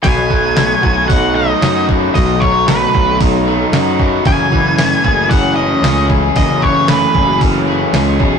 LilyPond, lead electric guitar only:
\new Staff \with { instrumentName = "Lead electric guitar" } { \time 4/4 \key b \mixolydian \tempo 4 = 114 gis''2 fis''8 dis''4 r8 | dis''8 cis''8 b'4 r2 | gis''2 fis''8 dis''4 r8 | dis''8 cis''8 b'4 r2 | }